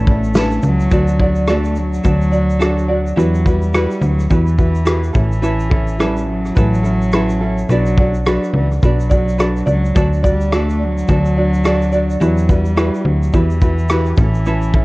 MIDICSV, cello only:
0, 0, Header, 1, 2, 480
1, 0, Start_track
1, 0, Key_signature, 2, "major"
1, 0, Tempo, 564440
1, 779, Time_signature, 4, 2, 24, 8
1, 12628, End_track
2, 0, Start_track
2, 0, Title_t, "Cello"
2, 0, Program_c, 0, 42
2, 0, Note_on_c, 0, 57, 88
2, 539, Note_off_c, 0, 57, 0
2, 560, Note_on_c, 0, 54, 107
2, 1278, Note_on_c, 0, 57, 85
2, 1291, Note_off_c, 0, 54, 0
2, 1514, Note_on_c, 0, 54, 103
2, 1526, Note_off_c, 0, 57, 0
2, 2706, Note_off_c, 0, 54, 0
2, 2718, Note_on_c, 0, 54, 89
2, 2967, Note_on_c, 0, 55, 80
2, 2980, Note_off_c, 0, 54, 0
2, 3447, Note_on_c, 0, 54, 89
2, 3460, Note_off_c, 0, 55, 0
2, 3673, Note_off_c, 0, 54, 0
2, 3679, Note_on_c, 0, 52, 84
2, 4356, Note_off_c, 0, 52, 0
2, 4403, Note_on_c, 0, 52, 93
2, 5119, Note_on_c, 0, 55, 78
2, 5132, Note_off_c, 0, 52, 0
2, 5350, Note_off_c, 0, 55, 0
2, 5355, Note_on_c, 0, 54, 102
2, 6515, Note_off_c, 0, 54, 0
2, 6562, Note_on_c, 0, 54, 94
2, 6999, Note_off_c, 0, 54, 0
2, 7043, Note_on_c, 0, 54, 76
2, 7257, Note_off_c, 0, 54, 0
2, 7291, Note_on_c, 0, 52, 77
2, 7393, Note_off_c, 0, 52, 0
2, 7544, Note_on_c, 0, 54, 88
2, 8209, Note_off_c, 0, 54, 0
2, 8250, Note_on_c, 0, 54, 84
2, 8683, Note_off_c, 0, 54, 0
2, 8726, Note_on_c, 0, 55, 83
2, 8971, Note_on_c, 0, 57, 81
2, 8984, Note_off_c, 0, 55, 0
2, 9218, Note_on_c, 0, 54, 104
2, 9231, Note_off_c, 0, 57, 0
2, 10399, Note_off_c, 0, 54, 0
2, 10406, Note_on_c, 0, 54, 85
2, 10633, Note_on_c, 0, 55, 86
2, 10646, Note_off_c, 0, 54, 0
2, 11121, Note_on_c, 0, 54, 73
2, 11134, Note_off_c, 0, 55, 0
2, 11357, Note_on_c, 0, 52, 86
2, 11369, Note_off_c, 0, 54, 0
2, 12068, Note_off_c, 0, 52, 0
2, 12077, Note_on_c, 0, 52, 90
2, 12628, Note_off_c, 0, 52, 0
2, 12628, End_track
0, 0, End_of_file